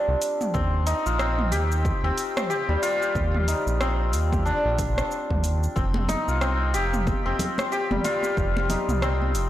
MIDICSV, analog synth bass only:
0, 0, Header, 1, 2, 480
1, 0, Start_track
1, 0, Tempo, 652174
1, 399, Time_signature, 4, 2, 24, 8
1, 6989, End_track
2, 0, Start_track
2, 0, Title_t, "Analog synth bass"
2, 0, Program_c, 0, 38
2, 59, Note_on_c, 0, 36, 92
2, 119, Note_off_c, 0, 36, 0
2, 401, Note_on_c, 0, 39, 106
2, 692, Note_off_c, 0, 39, 0
2, 782, Note_on_c, 0, 34, 77
2, 1117, Note_on_c, 0, 39, 95
2, 1128, Note_off_c, 0, 34, 0
2, 1409, Note_off_c, 0, 39, 0
2, 1496, Note_on_c, 0, 39, 81
2, 1557, Note_off_c, 0, 39, 0
2, 1978, Note_on_c, 0, 39, 99
2, 2038, Note_off_c, 0, 39, 0
2, 2319, Note_on_c, 0, 39, 109
2, 2610, Note_off_c, 0, 39, 0
2, 2697, Note_on_c, 0, 34, 80
2, 3037, Note_on_c, 0, 39, 97
2, 3048, Note_off_c, 0, 34, 0
2, 3330, Note_off_c, 0, 39, 0
2, 3422, Note_on_c, 0, 34, 81
2, 3697, Note_off_c, 0, 34, 0
2, 3904, Note_on_c, 0, 39, 89
2, 4178, Note_off_c, 0, 39, 0
2, 4243, Note_on_c, 0, 29, 104
2, 4532, Note_off_c, 0, 29, 0
2, 4622, Note_on_c, 0, 36, 89
2, 4961, Note_on_c, 0, 29, 99
2, 4972, Note_off_c, 0, 36, 0
2, 5251, Note_off_c, 0, 29, 0
2, 5341, Note_on_c, 0, 29, 82
2, 5400, Note_off_c, 0, 29, 0
2, 5821, Note_on_c, 0, 29, 95
2, 5880, Note_off_c, 0, 29, 0
2, 6162, Note_on_c, 0, 29, 106
2, 6452, Note_off_c, 0, 29, 0
2, 6538, Note_on_c, 0, 36, 85
2, 6874, Note_on_c, 0, 29, 106
2, 6885, Note_off_c, 0, 36, 0
2, 6989, Note_off_c, 0, 29, 0
2, 6989, End_track
0, 0, End_of_file